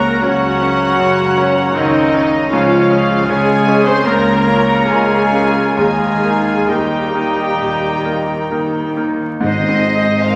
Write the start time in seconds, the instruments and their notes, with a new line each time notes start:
Already playing: double bass section C#2, grand piano C#2 C#4 A#4 C#5, cello section C#3, trombone section C#3 A#3, french horn section A#3, cor anglais F#4, viola section A#4, clarinet C#5, violin section A#5, flute A#5
0.22 double bass section C#2, trombone section C#3 A#3, cello section C#3, french horn section F#3, grand piano C#4 A#4 C#5, cor anglais C#4, viola section F#4, clarinet C#5, violin section F#5, flute A#5
0.62 grand piano C#4 A#4 C#5
0.97 double bass section C#2, grand piano F#2, cello section C#3
1.37 grand piano C#4 A#4 C#5
1.75 double bass section C#2, cello section C#3, french horn section D#3, cor anglais C4, grand piano C#4 A#4 C#5, viola section D#4, violin section D#5
2.14 grand piano C#4 A#4 C#5
2.49 double bass section C#2, grand piano C#2, trombone section C#3 G#3, cello section C#3, french horn section F3, cor anglais C#4, viola section F4, clarinet C#5, violin section F5, flute G#5
2.90 grand piano C#4 G#4 C#5
3.25 double bass section C#2, trombone section C#3 G#3, cello section C#3, french horn section G#3, grand piano C#4, cor anglais F4, viola section G#4, clarinet C#5, flute G#5, violin section G#5
3.30 grand piano G#4 C#5
3.68 grand piano C#4 G#4 C#5
3.85 french horn section C4, cor anglais G#4, viola section C5, violin section C6
4.04 double bass section C#2, grand piano C#2, trombone section C#3 A#3, cello section C#3, french horn section A#3, cor anglais F4, viola section A#4, clarinet C#5, flute A#5, violin section A#5
4.47 grand piano C#4 F4 A#4
4.87 double bass section C#2, cello section C#3, french horn section G#3, grand piano C#4 F4 A#4, cor anglais F4, viola section G#4, violin section G#5
5.32 grand piano C#4 F4 A#4
5.76 double bass section D#2, grand piano D#2, trombone section D#3 A#3, cello section D#3, timpani D#3, french horn section G#3, cor anglais F4, viola section G#4, clarinet D#5, violin section G#5, flute A#5
6.23 grand piano A#3 D#4 A#4
6.68 double bass section D#2, trombone section D#3 A#3, cello section D#3, french horn section G3, grand piano A#3 D#4 A#4, cor anglais D#4, viola section G4, clarinet D#5, violin section G5, flute A#5
7.13 grand piano A#3 D#4 A#4
7.59 double bass section D#2, grand piano A#2, cello section D#3
8.05 grand piano A#3 D#4 A#4
8.51 double bass section D#2, cello section D#3, grand piano A#3 D#4 A#4
8.97 grand piano A#3 D#4 A#4
9.41 double bass section G#1, grand piano G#2, cello section G#2, timpani G#2, trombone section D#3 G#3, french horn section C4 D#4, viola section D#4 C5, flute D#5
9.45 clarinet C5, violin section D#5
9.68 grand piano C4
9.95 grand piano G#4
10.21 grand piano C5, violin section F5, flute F5
10.27 clarinet A#4